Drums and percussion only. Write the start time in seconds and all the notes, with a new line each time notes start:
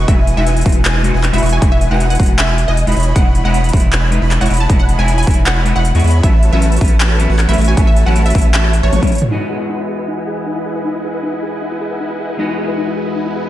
0.08 kick, closed hi-hat
0.27 closed hi-hat
0.47 closed hi-hat
0.57 closed hi-hat
0.61 closed hi-hat
0.66 kick, closed hi-hat
0.69 closed hi-hat
0.72 closed hi-hat
0.85 clap, closed hi-hat
1.04 closed hi-hat
1.24 clap, closed hi-hat
1.33 closed hi-hat
1.38 closed hi-hat
1.43 closed hi-hat
1.46 closed hi-hat
1.49 closed hi-hat
1.62 kick, closed hi-hat
1.81 closed hi-hat
2.00 closed hi-hat
2.10 closed hi-hat
2.15 closed hi-hat
2.20 kick, closed hi-hat
2.23 closed hi-hat
2.26 closed hi-hat
2.39 clap, closed hi-hat
2.58 closed hi-hat
2.77 closed hi-hat
2.87 closed hi-hat
2.92 closed hi-hat
2.96 closed hi-hat
3.00 closed hi-hat
3.03 closed hi-hat
3.16 kick, closed hi-hat
3.35 closed hi-hat
3.54 closed hi-hat
3.64 closed hi-hat
3.69 closed hi-hat
3.73 kick, closed hi-hat
3.77 closed hi-hat
3.80 closed hi-hat
3.93 clap, closed hi-hat
4.12 closed hi-hat
4.31 clap, closed hi-hat
4.41 closed hi-hat
4.46 closed hi-hat
4.50 closed hi-hat
4.54 closed hi-hat
4.57 closed hi-hat
4.70 kick, closed hi-hat
4.89 closed hi-hat
5.08 closed hi-hat
5.18 closed hi-hat
5.23 closed hi-hat
5.27 kick, closed hi-hat
5.31 closed hi-hat
5.34 closed hi-hat
5.46 clap, closed hi-hat
5.66 closed hi-hat
5.85 closed hi-hat
5.95 closed hi-hat
6.00 closed hi-hat
6.04 closed hi-hat
6.07 closed hi-hat
6.11 closed hi-hat
6.23 kick, closed hi-hat
6.43 closed hi-hat
6.62 closed hi-hat
6.72 closed hi-hat
6.77 closed hi-hat
6.81 kick, closed hi-hat
6.85 closed hi-hat
6.88 closed hi-hat
7.00 clap, closed hi-hat
7.20 closed hi-hat
7.39 clap, closed hi-hat
7.49 closed hi-hat
7.53 closed hi-hat
7.58 closed hi-hat
7.61 closed hi-hat
7.64 closed hi-hat
7.77 kick, closed hi-hat
7.96 closed hi-hat
8.16 closed hi-hat
8.26 closed hi-hat
8.30 closed hi-hat
8.35 kick, closed hi-hat
8.38 closed hi-hat
8.41 closed hi-hat
8.54 clap, closed hi-hat
8.73 closed hi-hat
8.93 closed hi-hat, high tom
9.03 kick, closed hi-hat, high tom
9.07 closed hi-hat
9.12 closed hi-hat
9.15 closed hi-hat
9.18 closed hi-hat, mid tom